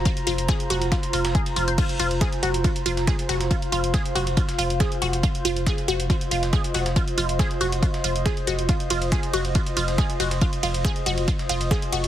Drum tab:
CC |----------------|x---------------|----------------|----------------|
RD |x-x-x-xxx-xx-xx-|x-x-x-x-x-x-x-x-|x-x-x-xxx-x-x-x-|x-x-x-x-x-x-x-x-|
HH |xxoxxxoxxxoxxxox|xxoxxxoxxxoxxxox|xxoxxxoxxxoxxxox|xxoxxxoxxxoxxxox|
SD |----o---o--o----|----o------oo-oo|----o----o--o---|----o------oo-oo|
BD |o---o---o---o---|o---o---o---o---|o---o---o---o---|o---o---o---o---|

CC |----------------|----------------|----------------|
RD |x-x-x-xxx-x-x-x-|x-x-x-x-x-x-x-x-|x-x-x-xxx-x-x-x-|
HH |xxoxxxoxxxoxxxox|xxoxxxoxxxoxxxox|xxoxxxoxxxoxxxox|
SD |----o----o--o---|----o------oo-oo|----o----o--o---|
BD |o---o---o---o---|o---o---o---o---|o---o---o---o---|